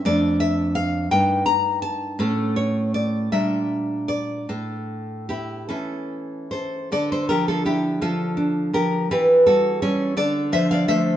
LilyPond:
\new Staff \with { instrumentName = "Nylon-string guitar" } { \time 6/8 \key d \minor \tempo 4. = 55 << { d''8 e''8 f''8 g''8 bes''8 a''8 | a'8 cis''8 d''8 e''4 d''8 | a'4 <e' g'>8 <e' a'>4 <a' c''>8 | <a' d''>16 <a' c''>16 <g' bes'>16 <f' a'>16 <e' g'>8 <f' a'>4 <g' bes'>8 |
<g' b'>8 <fis' a'>8 <a' cis''>8 <a' d''>8 <c'' e''>16 <d'' f''>16 <c'' e''>8 | } \\ { <f, a d'>4. <g, bes ees'>4. | <a, a cis'>4. <bes, g d'>4. | a,4. <e cis'>4. | d8 f8 d'8 f8 d'8 f8 |
e8 g8 <g cis'>8 d8 f8 <f a>8 | } >> }